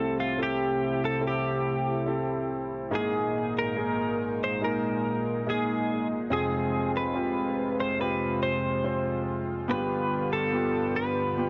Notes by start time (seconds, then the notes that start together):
Already playing: C2 C3 A3 C4 E4 G4 A4
0.20 F4
0.37 C4 E4 A4
0.43 G4
1.05 A4
1.21 C4 E4 A4
1.27 G4
2.06 C4 E4 A4
2.91 G#1 G#2 A#2 G#3 A#3 D#4 G#4
2.95 G#4
3.59 A#4
3.76 A#3 D#4 G#4
4.44 C5
4.61 A#3 D#4 G#4 A#4
5.46 A#3 D#4 G#4
6.30 F1 F2 C3 C4 F4 G#4
6.97 B4
7.15 C4 F4 G4
7.80 C5
8.00 C4 F4 G4 B4
8.43 C5
8.84 C4 F4 C5
9.68 G1 G2 D3 B3 F4 G4 B4
10.33 A4
10.52 B3 F4 G4
10.96 B4
11.37 B3 F4 G4